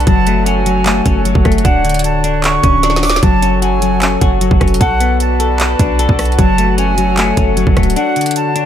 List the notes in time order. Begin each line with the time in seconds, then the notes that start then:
Already playing: F#4 F#5
0.00 closed hi-hat
0.07 F#1 F#3 A4 C#5 A5, kick, closed hi-hat
0.27 A3, closed hi-hat
0.46 C#4 G#5, closed hi-hat
0.66 F#3, closed hi-hat
0.86 A3, clap, closed hi-hat
1.06 F#1 C#4, kick, closed hi-hat
1.25 F#3, closed hi-hat
1.35 F#1, kick
1.45 F#1 A3, kick, cross-stick, closed hi-hat
1.52 closed hi-hat
1.58 closed hi-hat
1.64 D1 D4 F#5, kick, closed hi-hat
1.84 D3, closed hi-hat
1.89 closed hi-hat
1.94 closed hi-hat
1.99 closed hi-hat
2.04 A5, closed hi-hat
2.24 D4, closed hi-hat
2.44 C#6, clap, closed hi-hat
2.63 D1 C#4, kick, closed hi-hat
2.83 D4, snare, closed hi-hat
2.90 snare
2.96 snare
3.03 D6, snare, open hi-hat
3.10 snare
3.16 snare
3.23 F#1 F#3 F#4 A4 A5, kick, closed hi-hat
3.42 C#4, closed hi-hat
3.62 F#4 G#5, closed hi-hat
3.82 F#3, closed hi-hat
4.02 C#4, clap, closed hi-hat
4.21 F#1 F#4, kick, closed hi-hat
4.41 F#3, closed hi-hat
4.51 F#1, kick
4.60 F1 C#4, kick, cross-stick, closed hi-hat
4.68 closed hi-hat
4.74 closed hi-hat
4.80 B1 A4 B4 D5 F#5, kick, closed hi-hat
5.00 B3, closed hi-hat
5.20 A5, closed hi-hat
5.40 A4, closed hi-hat
5.60 clap, closed hi-hat
5.79 B1 D4, kick, closed hi-hat
5.99 A4, closed hi-hat
6.09 B1, kick
6.19 cross-stick, closed hi-hat, open hi-hat
6.25 closed hi-hat
6.32 closed hi-hat
6.38 F#1 F#3 A4 C#5 A5, kick, closed hi-hat
6.58 A3, closed hi-hat
6.78 C#4 G#5, closed hi-hat
6.98 F#3, closed hi-hat
7.17 A3, clap, closed hi-hat
7.37 F#1 C#4, kick, closed hi-hat
7.57 F#3, closed hi-hat
7.67 F#1, kick
7.76 D1 A3, kick, cross-stick, closed hi-hat
7.83 closed hi-hat
7.90 closed hi-hat
7.96 D4 A4 C#5 F#5, closed hi-hat
8.16 D3, closed hi-hat
8.21 closed hi-hat
8.26 closed hi-hat
8.31 closed hi-hat
8.36 A5, closed hi-hat
8.56 D4, closed hi-hat